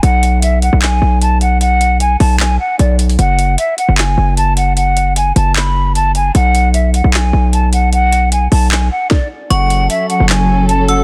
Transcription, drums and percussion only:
0.03 closed hi-hat
0.23 closed hi-hat
0.42 closed hi-hat
0.62 closed hi-hat
0.82 clap, closed hi-hat
1.22 closed hi-hat
1.41 closed hi-hat
1.61 closed hi-hat
1.81 closed hi-hat
2.00 closed hi-hat
2.20 open hi-hat
2.40 clap, closed hi-hat
2.79 closed hi-hat
2.99 closed hi-hat, open hi-hat
3.09 closed hi-hat
3.19 closed hi-hat
3.39 closed hi-hat
3.58 closed hi-hat
3.78 closed hi-hat
3.98 clap, closed hi-hat
4.37 closed hi-hat
4.57 closed hi-hat
4.77 closed hi-hat
4.97 closed hi-hat
5.16 closed hi-hat
5.36 closed hi-hat
5.56 clap, closed hi-hat
5.95 closed hi-hat
6.15 closed hi-hat
6.35 closed hi-hat
6.55 closed hi-hat
6.74 closed hi-hat
6.94 closed hi-hat
7.14 clap, closed hi-hat
7.53 closed hi-hat
7.73 closed hi-hat
7.93 closed hi-hat
8.12 closed hi-hat
8.32 closed hi-hat
8.52 open hi-hat
8.71 clap, closed hi-hat
9.11 kick, snare
9.50 closed hi-hat
9.70 closed hi-hat
9.90 closed hi-hat
10.10 closed hi-hat
10.29 clap, closed hi-hat
10.69 closed hi-hat
10.88 closed hi-hat

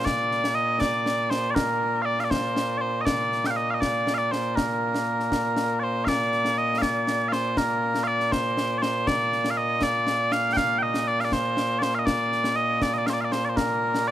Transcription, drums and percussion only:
0.06 concert bass drum, snare
0.31 snare
0.44 snare
0.81 concert bass drum, snare
1.06 snare
1.31 snare
1.56 concert bass drum, snare
2.19 snare
2.31 concert bass drum, snare
2.56 snare
3.07 concert bass drum, snare
3.32 snare
3.44 snare
3.82 concert bass drum, snare
4.07 snare
4.33 snare
4.57 concert bass drum, snare
4.95 snare
5.20 snare
5.32 concert bass drum, snare
5.57 snare
6.07 concert bass drum, snare
6.32 snare
6.45 snare
6.82 concert bass drum, snare
7.07 snare
7.32 snare
7.57 concert bass drum, snare
7.95 snare
8.20 snare
8.32 concert bass drum, snare
8.57 snare
8.83 snare
9.07 concert bass drum, snare
9.32 snare
9.44 snare
9.82 concert bass drum, snare
10.07 snare
10.32 snare
10.57 concert bass drum, snare
10.94 snare
11.20 snare
11.32 concert bass drum, snare
11.57 snare
11.82 snare
12.07 concert bass drum, snare
12.32 snare
12.44 snare
12.82 concert bass drum, snare
13.07 snare
13.32 snare
13.57 concert bass drum, snare
13.94 snare

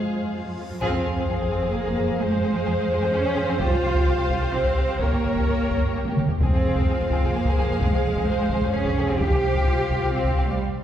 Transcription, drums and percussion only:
0.82 taiko
3.60 taiko
3.95 taiko
4.29 taiko
4.64 taiko
5.00 taiko
5.35 taiko
5.71 taiko
6.05 taiko high
6.17 taiko mid
6.29 taiko low
6.40 taiko
6.76 taiko
7.10 taiko
7.45 taiko
7.81 taiko
8.16 taiko
8.50 taiko
8.85 taiko
9.20 taiko
9.55 taiko
9.90 taiko
10.25 taiko

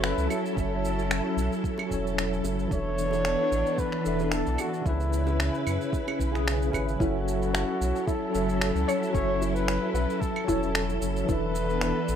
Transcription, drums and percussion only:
0.04 finger snap, shaker
0.18 shaker
0.30 high bongo, claves, shaker
0.46 shaker
0.57 kick, shaker
0.85 shaker
0.99 shaker
1.11 finger snap, shaker
1.38 shaker
1.53 shaker
1.64 kick, shaker
1.78 high bongo, claves
1.91 kick, shaker
2.07 shaker
2.18 finger snap, shaker
2.33 shaker
2.44 high bongo, shaker
2.59 shaker
2.71 kick, shaker
2.98 shaker
3.11 high bongo, shaker
3.25 finger snap, shaker
3.52 shaker
3.67 shaker
3.78 kick, shaker
3.92 finger snap
4.05 shaker
4.19 high bongo, shaker
4.32 finger snap, shaker
4.47 shaker
4.58 high bongo, claves, shaker
4.74 shaker
4.86 kick, shaker
5.00 shaker
5.13 shaker
5.27 high bongo, shaker
5.40 finger snap, shaker
5.55 shaker
5.67 claves, shaker
5.81 shaker
5.93 kick, shaker
6.08 high bongo, claves
6.20 kick, shaker
6.35 finger snap, shaker
6.48 finger snap, shaker
6.62 shaker
6.73 kick, high bongo, claves, shaker
6.89 shaker
7.00 kick, shaker
7.28 shaker
7.42 shaker
7.55 finger snap, shaker
7.82 shaker
7.96 shaker
8.07 kick, shaker
8.35 shaker
8.49 shaker
8.62 finger snap, shaker
8.76 shaker
8.89 claves, shaker
9.03 shaker
9.14 kick, shaker
9.42 shaker
9.56 shaker
9.68 finger snap, shaker
9.95 shaker
10.10 shaker
10.22 kick, shaker
10.36 claves
10.48 kick, shaker
10.63 shaker
10.75 finger snap, shaker
10.90 shaker
11.02 shaker
11.16 shaker
11.29 kick, shaker
11.55 shaker
11.70 shaker
11.81 finger snap, shaker
12.08 shaker

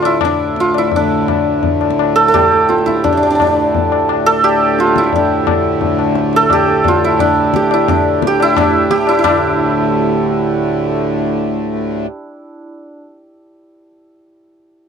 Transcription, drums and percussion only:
0.02 tabla na
0.21 tabla na, tabla ge
0.56 tabla te
0.74 tabla na
0.92 tabla tin, tabla ge
1.28 tabla na, tabla ge
1.63 tabla tin, tabla ge
1.81 tabla na
1.91 tabla ke
1.99 tabla na
2.34 tabla na, tabla ge
2.52 tabla te
2.70 tabla te
2.78 tabla te
2.88 tabla ke
2.97 tabla te
3.04 tabla tin, tabla ge
3.40 tabla na, tabla ge
3.75 tabla tin, tabla ge
3.92 tabla na
4.09 tabla na
4.27 tabla na
4.44 tabla na
4.79 tabla te
4.87 tabla te
4.96 tabla ke
5.04 tabla te
5.13 tabla tin, tabla ge
5.47 tabla na, tabla ge
5.81 tabla tin, tabla ge
5.99 tabla na
6.15 tabla te
6.33 tabla te
6.50 tabla na, tabla ge
6.68 tabla te
6.84 tabla na, tabla ge
7.19 tabla tin, tabla ge
7.54 tabla ke
7.71 tabla na
7.88 tabla na, tabla ge
8.22 tabla ke
8.40 tabla na
8.57 tabla na, tabla ge
8.91 tabla ke
9.07 tabla na
9.24 tabla na, tabla ge

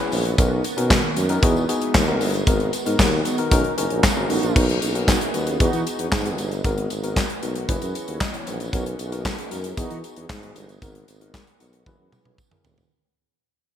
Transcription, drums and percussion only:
0.12 open hi-hat, tambourine
0.25 closed hi-hat, tambourine
0.38 kick, closed hi-hat, tambourine
0.64 closed hi-hat, tambourine
0.78 closed hi-hat, tambourine
0.90 kick, snare, clap, tambourine
1.16 closed hi-hat, tambourine
1.29 closed hi-hat, tambourine
1.43 kick, closed hi-hat, tambourine
1.56 tambourine
1.69 closed hi-hat, tambourine
1.82 closed hi-hat
1.95 kick, snare, clap, tambourine
2.21 open hi-hat, tambourine
2.34 closed hi-hat, tambourine
2.47 kick, closed hi-hat, tambourine
2.60 closed hi-hat
2.73 closed hi-hat, tambourine
2.86 closed hi-hat, tambourine
2.99 kick, snare, clap, tambourine
3.25 closed hi-hat, tambourine
3.38 closed hi-hat
3.51 kick, closed hi-hat, tambourine
3.64 closed hi-hat
3.78 closed hi-hat, tambourine
3.90 closed hi-hat
4.04 kick, snare, clap, tambourine
4.30 open hi-hat, tambourine
4.43 closed hi-hat, tambourine
4.56 kick, crash, tambourine
4.69 closed hi-hat
4.82 closed hi-hat, tambourine
4.95 closed hi-hat
5.08 kick, snare, clap, tambourine
5.21 closed hi-hat
5.34 closed hi-hat, tambourine
5.47 closed hi-hat, tambourine
5.60 kick, closed hi-hat, tambourine
5.73 closed hi-hat, tambourine
5.86 closed hi-hat, tambourine
5.99 closed hi-hat
6.12 kick, snare, clap, tambourine
6.26 closed hi-hat
6.38 closed hi-hat, tambourine
6.51 closed hi-hat, tambourine
6.64 kick, closed hi-hat, tambourine
6.78 closed hi-hat
6.90 closed hi-hat, tambourine
7.03 closed hi-hat, tambourine
7.16 kick, snare, clap, tambourine
7.30 closed hi-hat
7.43 closed hi-hat, tambourine
7.55 closed hi-hat
7.69 kick, closed hi-hat, tambourine
7.82 closed hi-hat, tambourine
7.95 closed hi-hat, tambourine
8.08 closed hi-hat
8.21 kick, snare, clap, tambourine
8.34 closed hi-hat
8.47 closed hi-hat, tambourine
8.60 closed hi-hat, tambourine
8.73 kick, closed hi-hat, tambourine
8.86 closed hi-hat
8.99 closed hi-hat, tambourine
9.12 closed hi-hat, tambourine
9.25 kick, snare, clap, tambourine
9.38 closed hi-hat
9.51 closed hi-hat, tambourine
9.64 closed hi-hat, tambourine
9.77 kick, closed hi-hat, tambourine
9.90 closed hi-hat
10.04 closed hi-hat, tambourine
10.16 closed hi-hat
10.30 kick, snare, clap, tambourine
10.43 closed hi-hat
10.55 closed hi-hat, tambourine
10.69 closed hi-hat, tambourine
10.82 kick, closed hi-hat, tambourine
10.95 closed hi-hat
11.08 closed hi-hat, tambourine
11.21 closed hi-hat
11.34 kick, snare, clap, tambourine
11.47 closed hi-hat
11.60 closed hi-hat, tambourine
11.73 closed hi-hat
11.86 kick, high tom, tambourine
12.12 mid tom, tambourine
12.25 mid tom
12.38 kick, tambourine
12.51 mid tom
12.64 floor tom, tambourine
12.78 floor tom, tambourine

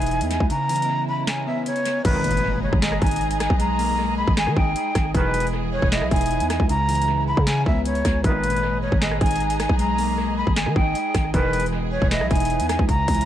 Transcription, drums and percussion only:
0.02 closed hi-hat
0.06 closed hi-hat
0.11 closed hi-hat
0.21 closed hi-hat
0.31 closed hi-hat
0.40 kick
0.50 closed hi-hat
0.69 closed hi-hat, open hi-hat
0.76 closed hi-hat
0.82 closed hi-hat
1.27 snare, closed hi-hat
1.66 closed hi-hat
1.76 closed hi-hat
1.85 closed hi-hat
2.05 kick, closed hi-hat, crash
2.24 closed hi-hat
2.31 closed hi-hat
2.37 closed hi-hat
2.73 kick
2.82 snare, closed hi-hat
2.92 cross-stick
3.02 kick, closed hi-hat
3.06 closed hi-hat
3.11 closed hi-hat
3.16 closed hi-hat
3.21 closed hi-hat
3.31 closed hi-hat
3.40 cross-stick, closed hi-hat
3.50 kick
3.60 closed hi-hat
3.79 open hi-hat
4.27 kick
4.37 snare, closed hi-hat
4.47 cross-stick
4.57 kick
4.76 closed hi-hat
4.95 kick, cross-stick, closed hi-hat
5.14 kick, closed hi-hat
5.34 closed hi-hat
5.40 closed hi-hat
5.47 closed hi-hat
5.82 kick
5.92 snare, closed hi-hat
6.02 cross-stick
6.11 kick, closed hi-hat
6.16 closed hi-hat
6.21 closed hi-hat
6.26 closed hi-hat
6.31 closed hi-hat
6.40 closed hi-hat
6.50 cross-stick, closed hi-hat
6.60 kick
6.69 closed hi-hat
6.89 closed hi-hat, open hi-hat
6.95 closed hi-hat
7.02 closed hi-hat
7.37 kick
7.47 snare, closed hi-hat
7.66 kick
7.86 closed hi-hat
7.95 closed hi-hat
8.05 kick, cross-stick, closed hi-hat
8.24 kick, closed hi-hat
8.44 closed hi-hat
8.50 closed hi-hat
8.56 closed hi-hat
8.92 kick
9.02 snare, closed hi-hat
9.11 cross-stick
9.21 kick, closed hi-hat
9.26 closed hi-hat
9.31 closed hi-hat
9.36 closed hi-hat
9.40 closed hi-hat
9.50 closed hi-hat
9.60 cross-stick, closed hi-hat
9.69 kick
9.79 closed hi-hat
9.98 open hi-hat
10.47 kick
10.56 snare, closed hi-hat
10.66 cross-stick
10.76 kick
10.95 closed hi-hat
11.15 kick, cross-stick, closed hi-hat
11.34 kick, closed hi-hat
11.53 closed hi-hat
11.60 closed hi-hat
11.66 closed hi-hat
12.02 kick
12.11 snare, closed hi-hat
12.21 cross-stick
12.31 kick, closed hi-hat
12.35 closed hi-hat
12.40 closed hi-hat
12.45 closed hi-hat
12.50 closed hi-hat
12.60 closed hi-hat
12.69 cross-stick, closed hi-hat
12.79 kick
12.89 kick, closed hi-hat
13.08 kick, closed hi-hat, open hi-hat
13.15 closed hi-hat
13.21 closed hi-hat

